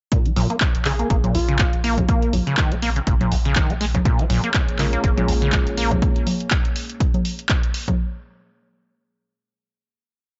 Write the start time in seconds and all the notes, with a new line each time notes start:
0.12 A#2, kick, closed hi-hat
0.26 F3, closed hi-hat
0.36 A#1 A#2, open hi-hat, low conga
0.50 A#3, closed hi-hat
0.61 kick, clap, closed hi-hat
0.75 A#1, closed hi-hat
0.85 C#3 G#4, clap, open hi-hat
0.99 A#3, closed hi-hat
1.10 G#1 A#3, kick, closed hi-hat
1.24 A#2, closed hi-hat, low conga
1.35 A#1 F4, open hi-hat
1.48 C#3, closed hi-hat
1.59 G#2, kick, clap, closed hi-hat
1.73 A#1, closed hi-hat
1.84 A#3, open hi-hat
1.98 A#2, kick, closed hi-hat, low conga
2.09 A#3, kick, closed hi-hat
2.22 closed hi-hat
2.33 A#1, open hi-hat, low conga
2.47 C#3, closed hi-hat
2.57 D#3, kick, clap, closed hi-hat
2.72 A#1 A#3, closed hi-hat
2.82 A#3, open hi-hat
2.96 C#3, closed hi-hat
3.07 G#1 A#2, kick, closed hi-hat
3.21 A#2, closed hi-hat, low conga
3.32 A#1, open hi-hat
3.45 C#3, closed hi-hat
3.56 D#3, kick, clap, closed hi-hat
3.70 A#1 A#3, closed hi-hat
3.81 G#3, open hi-hat
3.94 C#3, kick, closed hi-hat, low conga
4.05 A#2 A#3 G#4 C#5, kick, closed hi-hat
4.19 F3, closed hi-hat
4.30 A#1 A#2, open hi-hat, low conga
4.44 A#3, closed hi-hat
4.54 kick, clap, closed hi-hat
4.68 A#1, closed hi-hat
4.79 C#3 G#3 C#4 F4 A#4, clap, open hi-hat
4.93 A#3, closed hi-hat
5.04 G#1 A#3, kick, closed hi-hat
5.17 A#2 G#3 C#4 F4 G#4, closed hi-hat, low conga
5.28 A#1, open hi-hat
5.42 C#3, closed hi-hat
5.52 G#2, kick, clap, closed hi-hat
5.67 A#1, closed hi-hat
5.77 A#3, open hi-hat
5.91 A#2, kick, closed hi-hat, low conga
6.02 kick, closed hi-hat
6.16 closed hi-hat
6.27 open hi-hat, low conga
6.40 closed hi-hat
6.51 kick, clap, closed hi-hat
6.65 closed hi-hat
6.76 open hi-hat
6.90 closed hi-hat
7.00 kick, closed hi-hat
7.14 closed hi-hat, low conga
7.25 open hi-hat
7.39 closed hi-hat
7.49 kick, clap, closed hi-hat
7.63 closed hi-hat
7.74 open hi-hat
7.88 kick, closed hi-hat, low conga